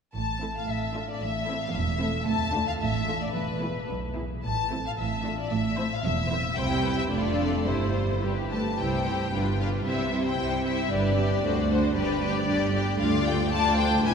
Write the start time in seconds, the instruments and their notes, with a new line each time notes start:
0.15 double bass section A1, cello section A2, violin section A5
0.42 viola section A3 C4, violin section E4 A4
0.57 violin section F5
0.68 double bass section A1, cello section A2, violin section E5
0.94 viola section A3 D4, violin section F4 A4
1.10 violin section D5
1.21 double bass section A1, cello section A2, violin section E5
1.47 viola section A3 C4, violin section E4 A4
1.62 violin section F5
1.74 double bass section E1, cello section E2, violin section E5
2.01 viola section A3 C4, violin section E4 A4
2.27 cello section D2, double bass section D2, violin section A5
2.53 viola section A3 D4, violin section F4 A4
2.67 violin section F5
2.81 double bass section A1, cello section A2, violin section E5
3.07 viola section A3 D4, violin section F4 A4
3.22 violin section D5
3.34 double bass section E1, cello section E2, violin section B4
3.61 viola section E3 B3, violin section E4 G#4
3.90 double bass section B1, cello section B2
4.16 viola section E3 B3, violin section E4 G#4
4.44 double bass section A1, cello section A2, violin section A5
4.70 viola section E3 C4, violin section E4 A4
4.86 violin section F5
4.98 double bass section A1, cello section A2, violin section E5
5.25 viola section A3 D4, violin section F4 A4
5.40 violin section D5
5.51 double bass section A1, cello section A2, violin section E5
5.77 viola section A3 C4, violin section E4 C5
5.93 violin section F5
6.04 double bass section E1, cello section E2, violin section E5
6.30 viola section A3 C4, violin section E4 C5
6.56 double bass section C2, cello section C3, viola section G3 C4, violin section E4 C5 G5
6.83 violin section B4
6.98 violin section E5
7.10 double bass section F1, cello section F2, viola section A3 D4, violin section F4 A4 D5
7.66 double bass section G1, cello section G2, viola section G3 E4, violin section E4 C5
7.94 violin section F4
8.22 viola section G3, violin section G4 B4
8.50 viola section A3, violin section A5
8.77 double bass section C2, cello section C3, viola section G3 E4, violin section G4 C5 G5
9.05 viola section G3 E4, violin section G4 C5
9.32 double bass section G1, cello section G2, viola section G3 D4, violin section F4 B4
9.59 viola section G3 D4, violin section F4 B4 F5
9.85 double bass section C2, cello section C3, viola section G3 C4, violin section E4 C5 E5
10.11 viola section G3 C4, violin section E4 C5
10.26 violin section G5
10.38 double bass section C2, cello section C3, viola section G3 C4, violin section E4 C5
10.63 viola section G3 C4, violin section E4 C5 E5
10.89 double bass section G1, cello section G2, viola section G3 D4, violin section G4 B4 D5
11.16 viola section G3 D4
11.20 violin section G4 B4
11.44 double bass section D2, cello section D2, viola section A3 D4, violin section F#4 C5
11.69 viola section A3 D4, violin section F#4 C5
11.95 double bass section G1, cello section G2, viola section G3 D4, violin section G4 B4 D5
12.20 viola section G3 D4, violin section G4 D5
12.35 violin section D5
12.47 double bass section G1, cello section G2, viola section G3 D4, violin section G4 D5
12.72 viola section G3 D4, violin section G4 D5
12.99 cello section D2, double bass section D2, viola section A3 D4, violin section F4 D5 F5
13.26 violin section G5
13.51 viola section A3 D4, violin section F4 D5 A5
13.77 violin section C5 G5
14.04 double bass section E1, cello section E2, viola section E3 D4, violin section E4 B4 G#5